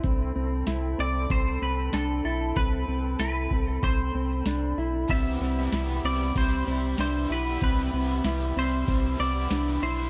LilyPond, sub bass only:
\new Staff \with { instrumentName = "Sub bass" } { \clef bass \time 4/4 \key c \major \tempo 4 = 95 c,8 c,8 c,8 c,8 c,8 c,8 c,8 b,,8 | c,8 c,8 c,8 c,8 c,8 c,8 c,8 b,,8 | c,8 c,8 c,8 c,8 c,8 c,8 c,8 b,,8 | c,8 c,8 c,8 c,8 c,8 c,8 c,8 b,,8 | }